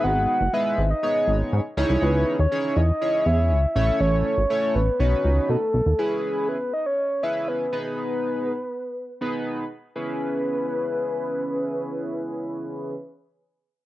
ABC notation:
X:1
M:4/4
L:1/16
Q:1/4=121
K:E
V:1 name="Soft synth lead"
f2 f2 e3 d4 z4 z | B3 c3 d4 e4 e2 | c2 c4 B2 c4 A4 | G4 B2 d c3 e2 B2 B B- |
B12 z4 | B16- | B16 |]
V:2 name="Analog polysynth"
[G,B,DGB]2 z2 [G,B,DGB]2 z2 [G,B,DGc]4 z2 [CDEGc]2- | [CDEGc]2 z2 [CDEGc]2 z2 [CEGc]4 z2 [A,CEAc]2- | [A,CEAc]2 z2 [A,CEAc]2 z2 [B,CDFB]4 z4 | [CEGB]4 z6 [CEGB]4 [B,DGB]2- |
[B,DGB]4 z6 [B,DGB]4 z2 | [CEGB]16- | [CEGB]16 |]
V:3 name="Analog synth bass" clef=bass
G,,,3 F,,, z2 G,,,2 z2 G,,,2 G,, z C,, =C,, | C,,3 D,, z2 E,,2 z2 E,,2 C,,2 A,,,2 | A,,,3 G,,, z2 A,,,2 B,,,2 C,,2 B,, z B,,, D,, | z16 |
z16 | z16 | z16 |]